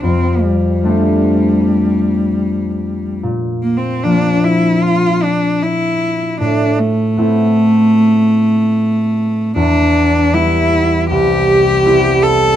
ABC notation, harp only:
X:1
M:4/4
L:1/8
Q:1/4=76
K:F
V:1 name="Harp"
[F,,G,A,C]2 [G,A,CD]6 | B,,2 [F,B,CD]6 | A,,2 [A,=B,CE]6 | E,,2 [G,=B,E]2 C,,2 [G,B,CE]2 |]